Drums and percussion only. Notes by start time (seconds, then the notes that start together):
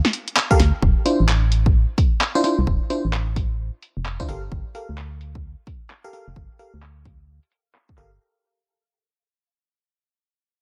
0.05 snare
0.13 open hi-hat
0.28 closed hi-hat
0.36 clap, closed hi-hat
0.51 kick
0.60 snare, open hi-hat
0.82 kick
1.06 open hi-hat
1.29 clap
1.52 open hi-hat
1.66 kick
1.98 kick, open hi-hat
2.21 clap
2.44 open hi-hat
2.67 kick
2.90 open hi-hat
3.13 clap
3.36 kick, open hi-hat
3.82 open hi-hat
4.06 clap
4.20 kick
4.29 open hi-hat
4.52 kick
4.75 open hi-hat
4.98 clap
5.21 open hi-hat
5.35 kick
5.67 kick, open hi-hat
5.90 clap
6.13 open hi-hat
6.36 kick
6.59 open hi-hat
6.82 clap
7.05 kick, open hi-hat
7.43 open hi-hat
7.52 open hi-hat
7.75 clap
7.89 kick
7.98 clap, open hi-hat